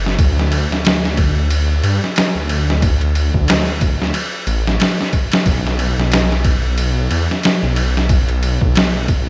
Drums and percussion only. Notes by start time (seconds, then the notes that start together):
0.06 snare
0.19 kick, ride
0.39 snare
0.52 ride
0.72 snare
0.85 snare, ride
1.05 snare
1.17 kick, ride
1.50 ride
1.83 ride
2.04 snare
2.16 snare, ride
2.49 ride
2.70 snare
2.82 kick, ride
3.01 ride
3.15 ride
3.34 kick
3.48 snare, ride
3.81 kick, ride
4.02 snare
4.14 ride
4.47 ride
4.67 snare
4.80 snare, ride
5.01 snare
5.13 kick, ride
5.32 snare, ride
5.46 kick, ride
5.67 snare
5.79 ride
6.00 snare
6.12 snare, ride
6.32 snare
6.44 kick, ride
6.78 ride
7.11 ride
7.31 snare
7.43 snare, ride
7.76 ride
7.97 snare
8.09 kick, ride
8.29 ride
8.43 ride
8.61 kick
8.75 snare, ride
9.08 kick, ride